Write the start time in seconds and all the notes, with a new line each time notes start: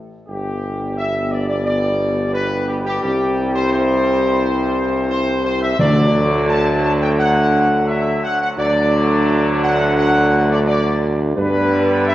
0.28 G1 B2 G3 B3 D4 G4
0.97 E5
1.31 D5
1.48 D5
1.65 D5
2.34 B4
2.68 G4
2.85 G4
3.03 C2 G2 C4 E4 G4
3.54 C5
3.71 C5
5.10 C5
5.45 C5
5.62 E5
5.79 D2 D3 F#3 A3 D4 D5
6.48 A5
6.83 A5
7.01 G5
7.18 F#5
7.87 E5
8.23 F#5
8.41 F#5
8.56 D2 D3 F#3 A3 D4 D5
9.63 F#5
9.98 F#5
10.50 D5
10.67 D5
11.36 G2 D3 G3 B3 D4 B4
12.07 E5